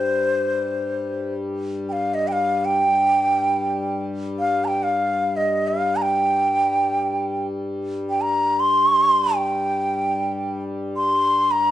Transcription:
Already playing: harmonium G2 G3, bansuri C5
1.89 bansuri F5 G5
2.14 bansuri D#5
2.28 bansuri G5
2.32 bansuri F5
2.65 bansuri G5
2.83 harmonium G2 G3
4.39 bansuri F5
4.64 bansuri G5 A#5
4.83 bansuri F5
5.36 bansuri D#5
5.68 bansuri F5
5.96 bansuri A#5
6.02 bansuri G5
8.10 bansuri G5
8.22 bansuri A#5
8.60 bansuri C6
9.35 bansuri G5
10.96 bansuri C6
11.51 bansuri A#5

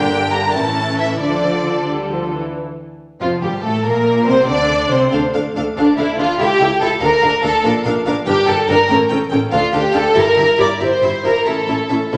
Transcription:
Already playing: double bass section G1, cello section G2, viola section D3 D4, violin section G4 A#4 G5
0.33 violin section A#5
0.54 double bass section A1, cello section A2, viola section E3 C#4, violin section E4 A4 A5
0.99 violin section E5
1.20 double bass section D2, cello section D3, viola section F3 D4, violin section D4 A4 D5
1.89 viola section G3
2.11 viola section F3
2.33 viola section E3
3.20 double bass section F1, cello section F2, viola section F3, violin section F4
3.41 double bass section G1, cello section G2, viola section G3, violin section G4
3.63 double bass section A1, cello section A2, viola section A3, violin section A4
3.84 double bass section A#1, cello section A#2, viola section A#3, violin section A#4
4.27 double bass section C2, cello section C3, viola section C4, violin section C5
4.47 double bass section D2, cello section D3, viola section D4, violin section D5
4.90 double bass section C2, cello section C3, viola section C4, violin section C5
5.12 cello section D2, double bass section D2, viola section D4 A4, violin section F5
5.33 cello section D2, double bass section D2, viola section D4 A4, violin section F5
5.55 cello section D2, double bass section D2, viola section D4 A4, violin section F5
5.76 cello section D2, double bass section D2, violin section D4 F5, viola section D4 A4
5.97 cello section D2, double bass section D2, viola section D4 A4, violin section E4 F5
6.18 cello section D2, double bass section D2, viola section D4 A4, violin section F4 F5
6.39 cello section C#2, double bass section C#2, viola section E4 A4, violin section G4 E5
6.60 double bass section C#2, cello section C#2, viola section E4 A4, violin section E5
6.80 double bass section C#2, cello section C#2, viola section E4 A4, violin section A4 E5
7.00 double bass section D2, cello section D2, viola section D4 A4, violin section A#4 F5
7.22 cello section D2, double bass section D2, viola section D4 A4, violin section F5
7.42 cello section D2, double bass section D2, viola section D4 A4, violin section A4 F5
7.64 double bass section A#1, cello section A#2, viola section D4 A#4, violin section F5
7.85 double bass section A#1, cello section A#2, viola section D4 A#4, violin section F5
8.05 double bass section A#1, cello section A#2, viola section D4 A#4, violin section F5
8.26 double bass section G1, cello section G2, viola section D4 A#4, violin section G4 G5
8.46 double bass section G1, cello section G2, viola section D4 A#4, violin section A4 G5
8.68 double bass section G1, cello section G2, viola section D4 A#4, violin section A#4 G5
8.88 double bass section A1, cello section A2, viola section C#4 A4, violin section G5
9.10 double bass section A1, cello section A2, viola section C#4 A4, violin section G5
9.31 double bass section A1, cello section A2, viola section C#4 A4, violin section G5
9.51 double bass section D2, cello section D2, viola section D4 A4, violin section F4 F5
9.72 double bass section D2, cello section D2, viola section D4 A4, violin section G4 F5
9.92 double bass section D2, cello section D2, viola section D4 A4, violin section A4 F5
10.14 double bass section G1, cello section G2, viola section E4 G4, violin section A#4 E5
10.37 double bass section G1, cello section G2, viola section E4 G4, violin section E5
10.58 double bass section G1, cello section G2, viola section E4 G4, violin section D5 E5
10.80 double bass section G1, cello section G2, viola section E4 G4, violin section C5 E5
11.02 double bass section G1, cello section G2, viola section E4 G4, violin section E5
11.24 double bass section G1, cello section G2, viola section E4 G4, violin section A#4 E5
11.45 double bass section A1, cello section A2, viola section C#4 E4, violin section A4 E5
11.68 double bass section A1, cello section A2, viola section C#4 E4, violin section E5
11.89 double bass section A1, cello section A2, viola section C#4 E4, violin section E5
12.12 double bass section A1, cello section C#3, viola section C#4 E4, violin section E5

